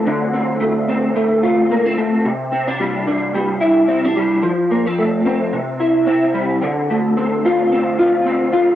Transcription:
X:1
M:4/4
L:1/16
Q:"Swing 16ths" 1/4=110
K:Dm
V:1 name="Clean electric guitar"
[D,A,CF]2 C2 A,2 C2 A,2 F2 B, C A,2 | C,2 C D G,2 D2 G,2 E2 C D G,2 | F,2 B, C A,2 C2 C,2 E2 C2 G,2 | D,2 A,2 C2 F2 C2 F2 C2 F2 |]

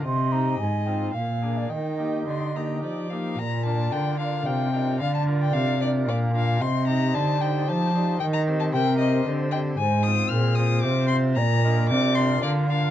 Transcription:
X:1
M:3/4
L:1/16
Q:1/4=112
K:Eb
V:1 name="Violin"
e8 f4 | g4 c'2 b2 d2 f2 | [K:Bb] b2 a2 g2 f2 g4 | f a2 g f2 d2 d2 f2 |
c'2 b2 a2 g2 a4 | g b2 a g2 e2 z2 g2 | [K:Fdor] a2 e'2 f'2 e'2 d'2 c'2 | b4 d'2 c'2 d2 f2 |]
V:2 name="Flute"
c'2 b2 a2 g2 f3 d | e8- e2 z2 | [K:Bb] d8 f2 e2 | d8 f4 |
e4 d4 c2 d2 | e4 B4 c2 e2 | [K:Fdor] c2 z2 A4 c4 | d2 e2 d4 f4 |]
V:3 name="Pipe organ"
z2 [CEG]2 z2 [CEF]2 z2 [B,DA]2 | z2 [B,EG]4 [B,EG]4 [B,EG]2 | [K:Bb] z2 [DFB]4 [DFB]4 [DFB]2 | z2 [DFB]4 [DFB]4 [DFB]2 |
z2 [EGc]4 [EGc]4 [EGc]2 | z2 [CGc]4 [CGc]4 [CGc]2 | [K:Fdor] z2 [CFc]4 [CFc]4 [CFc]2 | z2 [DFB]4 [DFB]4 [DFB]2 |]
V:4 name="Pipe organ" clef=bass
C,4 A,,4 B,,4 | E,4 D,4 F,4 | [K:Bb] B,,4 D,4 C,4 | D,4 C,4 B,,4 |
C,4 D,4 F,4 | E,4 C,4 D,4 | [K:Fdor] A,,4 B,,4 C,4 | B,,4 C,4 D,4 |]
V:5 name="Cello" clef=bass
C,4 A,,4 B,,4 | E,4 D,4 F,4 | [K:Bb] B,,4 D,4 C,4 | D,4 C,4 B,,4 |
C,4 D,4 F,4 | E,4 C,4 D,4 | [K:Fdor] A,,4 B,,4 C,4 | B,,4 C,4 D,4 |]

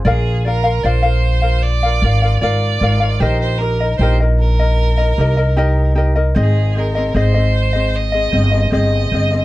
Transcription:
X:1
M:4/4
L:1/16
Q:1/4=76
K:Ab
V:1 name="Violin"
A2 B2 c4 =d4 d4 | c c B2 c2 B8 z2 | A2 B2 c4 e4 e4 |]
V:2 name="Ukulele"
[FB=df]2 [FBdf] [FBf] [FBdf] [FBf]2 [FBf]2 [FBf] [FBdf] [FBf] [FBdf]2 [FBdf] [FBf] | [EGBe]2 [EGBe] [EBe] [EGBe] [EBe]2 [EBe]2 [EBe] [EGBe] [EBe] [EGBe]2 [EGBe] [EBe] | [CAce]2 [CAce] [CAe] [CAce] [CAe]2 [CAe]2 [CAe] [CAce] [CAe] [CAce]2 [CAce] [CAe] |]
V:3 name="Upright bass" clef=bass
B,,,4 B,,,6 A,,,2 A,,,2 A,,,2 | B,,,4 B,,,6 C,,6 | A,,,4 A,,,6 G,,,2 G,,,2 G,,,2 |]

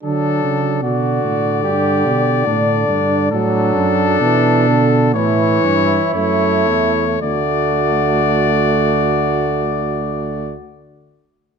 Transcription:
X:1
M:4/4
L:1/8
Q:1/4=62
K:D
V:1 name="Cornet"
A2 d6 | A4 c2 c2 | d8 |]
V:2 name="Flugelhorn"
D2 F2 G2 D2 | D4 E4 | F8 |]
V:3 name="Trombone" clef=bass
F,2 D,4 D,2 | F,2 E, D, E,2 A,2 | A,8 |]
V:4 name="Tuba" clef=bass
D, C, B,, A,, G,, B,, A,, G,, | A,, F,, B,,2 A,, G,, F,, E,, | D,,8 |]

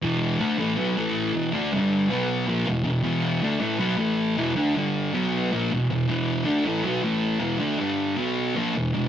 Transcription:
X:1
M:4/4
L:1/8
Q:1/4=158
K:Em
V:1 name="Distorted electric guitar" clef=bass
[E,,B,,E,]2 [D,A,D] [A,,E,A,] [B,,F,B,] [A,,E,A,]2 [E,,B,,E,] | [D,A,D] [G,,D,G,]2 [B,,F,B,]2 [^A,,=F,^A,] [E,,B,,] [E,,B,,] | [E,,B,,E,]2 [D,A,D] [A,,E,A,] [B,,F,B,] [A,,E,A,]2 [E,,B,,E,] | [D,A,D] [G,,D,G,]2 [B,,F,B,]2 [^A,,=F,^A,] [E,,B,,] [E,,B,,] |
[E,,B,,E,]2 [D,A,D] [A,,E,A,] [B,,F,B,] [A,,E,A,]2 [E,,B,,E,] | [D,A,D] [G,,D,G,]2 [B,,F,B,]2 [^A,,=F,^A,] [E,,B,,] [E,,B,,] |]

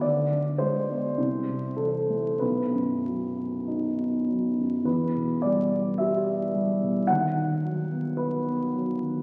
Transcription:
X:1
M:4/4
L:1/16
Q:1/4=52
K:Bphr
V:1 name="Grand piano"
d2 c4 A2 B6 z2 | B2 d2 e4 f4 B4 |]
V:2 name="Grand piano" clef=bass
D,, D, ^G, B, C,, C, E, A, B,,, F,, F, B, ^D B, F, F,, | E,, B,, G, B, G B, G, B,, ^D,, ^D, F, B,2 B, F, D, |]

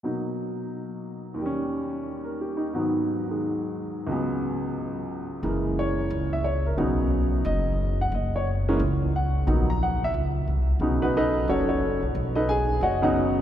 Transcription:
X:1
M:4/4
L:1/16
Q:"Swing" 1/4=179
K:F#mix
V:1 name="Grand piano"
z16 | z8 z2 A2 =G2 D2- | D z12 z3 | z16 |
z4 c6 e2 c2 A2 | z8 d6 f2 | d2 c2 z8 f4- | f2 a2 f2 e2 z8 |
z2 [B,DFB]2 [D=ABd]4 [CFAc]2 [CFAc]4 z2 | z2 [D=ABd]2 [Gg]4 [Fcdf]2 [Fcdf]4 z2 |]
V:2 name="Grand piano" clef=bass
[B,,F,A,D]16 | [D,,D,=G,C]16 | [G,,D,F,B,]6 [D,G,]8- [D,G,]2 | [C,,C,F,B,]16 |
[C,E,G,A,]8- [C,E,G,A,]2 z6 | [C,F,B,D]8- [C,F,B,D]2 z6 | z6 [E,G,A,C]2 z8 | [F,A,B,D]2 z12 z2 |
[C,F,B,D]8- [C,F,B,D]2 z6 | z8 z2 [C,F,B,D]6 |]
V:3 name="Upright bass" clef=bass
z16 | z16 | z16 | z16 |
F,,,8 C,,8 | B,,,8 F,,,8 | F,,,8 C,,8 | A,,,8 C,,4 ^B,,,4 |
B,,,8 F,,,6 A,,,2 | B,,,8 F,,,8 |]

